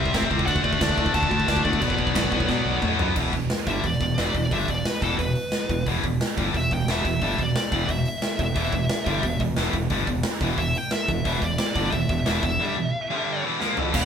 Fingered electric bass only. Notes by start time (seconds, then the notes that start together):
0.14 A2
0.31 C#2
0.47 D2
0.65 D2
0.81 D2
0.98 D2
1.14 D2
1.32 D2
1.48 D2
1.65 D2
1.82 B1
1.99 B1
2.16 B1
2.32 B1
2.49 B2
2.65 B1
2.83 A2
2.99 F#2
3.17 E1
3.33 E1
3.67 G1
3.84 E1
4.01 E1
4.17 E1
4.34 E1
4.52 G1
4.69 E1
5.02 E1
5.19 E1
5.69 E1
5.87 E1
6.04 E1
6.38 G1
6.54 E1
6.71 E1
6.87 E1
7.05 E1
7.22 G1
7.39 E1
7.72 E1
7.89 E1
8.39 E1
8.56 E1
8.73 E1
9.07 G1
9.24 E1
9.40 E1
9.57 E1
9.73 E1
9.91 G1
10.08 E1
10.41 E1
10.58 E1
11.09 E1
11.26 E1
11.42 E1
11.76 G1
11.93 E1
12.09 E1
12.28 E1
12.43 E1
13.94 E1